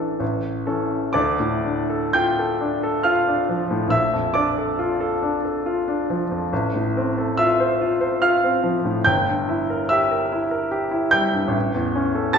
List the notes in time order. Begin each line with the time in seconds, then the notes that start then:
Already playing: A1 E3 D4 A4 D5
0.20 A1
0.66 E3 C#4 A4
1.13 D2 D5 D6
1.40 A2
1.65 D4
1.90 A4
2.13 F4 G5 G6
2.39 A4
2.61 D4
2.83 A4
3.03 F4 F5 F6
3.27 D4
3.49 F3
3.71 A2
3.88 A#1 E5 E6
4.13 F2
4.34 D4 D5 D6
4.58 A4
4.79 F4
5.00 A4
5.23 D4
5.45 A4
5.66 F4
5.88 D4
6.10 F3
6.31 F2
6.53 A1
6.75 A2
6.97 C4
7.18 A4
7.37 F4 E5 E6
7.60 C5
7.81 F4
8.01 C5
8.22 F4 F5 F6
8.44 C4
8.64 F3
8.85 A2
9.04 G1 G5 G6
9.28 G2
9.49 E4
9.70 A#4
9.89 G4 E5 E6
10.11 A#4
10.32 E4
10.51 A#4
10.71 G4
10.91 E4
11.11 G3 G5 G6
11.33 G2
11.48 A1
11.74 E2
11.95 C#4
12.15 A4
12.33 G4 A5 A6